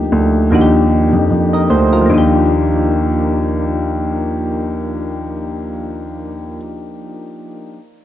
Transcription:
0.00 0.51 F3 medium
0.00 0.52 A#3 medium
0.00 0.53 D4 medium
0.00 0.53 D#4 medium
0.00 0.53 G4 loud
0.12 0.48 D2 medium
0.51 1.09 D#2 loud
0.51 1.93 F3 medium
0.51 1.94 A#3 medium
0.51 1.94 D4 medium
0.51 1.95 D#4 medium
0.51 0.60 F#4 medium
0.61 0.96 G4 medium
1.13 1.29 F2 medium
1.31 1.66 F2 medium
1.53 1.70 A#4 medium
1.53 1.69 D#5 medium
1.70 2.06 D2 medium
1.70 1.91 G4 medium
1.70 1.91 C5 medium
1.93 2.30 F4 medium
1.93 2.30 A#4 medium
2.01 6.49 F3 medium
2.06 6.57 D#2 loud
2.06 6.53 A#3 medium
2.06 6.57 D4 medium
2.14 6.61 D#4 medium
2.14 6.65 G4 medium

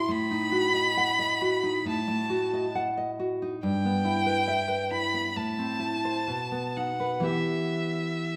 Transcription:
0.00 0.10 E4 soft
0.00 0.13 C6 medium
0.09 1.82 A2 medium
0.09 1.87 B5 medium
0.31 0.66 D#4 soft
0.52 0.88 F#4 soft
0.73 1.10 D#5 soft
0.97 1.33 F#5 medium
1.19 1.55 D#5 soft
1.41 1.77 F#4 soft
1.63 1.99 D#4 soft
1.85 3.57 A2 medium
1.85 2.74 A5 medium
2.08 2.43 A3 soft
2.30 2.65 F#4 soft
2.53 2.88 D#5 soft
2.75 3.10 F#5 soft
2.97 3.32 D#5 soft
3.19 3.54 F#4 soft
3.42 3.63 D#4 soft
3.63 5.33 G2 medium
3.63 4.88 G5 medium
3.85 4.19 B3 soft
4.05 4.39 E4 soft
4.26 4.61 B4 soft
4.48 4.83 E5 soft
4.68 5.04 B4 soft
4.91 5.27 E4 soft
4.91 5.37 B5 medium
5.14 5.36 B3 soft
5.36 6.26 A2 medium
5.36 6.78 A5 medium
5.59 5.96 C4 soft
5.79 6.18 E4 soft
6.05 6.28 C5 soft
6.27 7.23 B2 medium
6.52 6.91 B3 soft
6.76 7.16 D#4 soft
6.76 7.26 F#5 medium
7.00 7.25 B4 soft
7.20 8.36 E3 soft
7.20 8.36 B3 soft
7.20 8.36 G4 soft
7.27 8.36 E5 medium

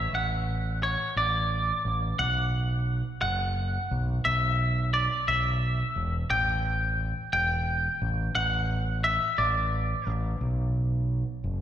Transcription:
0.00 0.12 E5 medium
0.13 0.95 A1 medium
0.13 0.79 F#5 medium
0.83 1.15 C#5 medium
1.16 1.71 A1 medium
1.16 2.19 D5 medium
1.85 2.12 A1 medium
2.19 3.01 B1 medium
2.19 3.20 F#5 medium
3.21 3.77 F#1 medium
3.21 4.21 F#5 medium
3.91 4.18 B1 medium
4.25 5.07 B1 medium
4.25 4.89 E5 medium
4.94 5.28 D5 medium
5.28 5.83 B1 medium
5.28 6.30 E5 medium
5.96 6.23 E1 medium
6.30 7.12 A1 medium
6.30 7.29 G5 medium
7.33 7.88 E1 medium
7.33 8.35 G5 medium
8.02 8.29 A1 medium
8.35 9.18 A1 medium
8.35 9.04 F#5 medium
9.04 9.40 E5 medium
9.38 9.93 A1 medium
9.38 10.12 D5 medium
10.07 10.34 A1 medium
10.41 11.23 B1 medium
11.44 11.61 F#1 medium

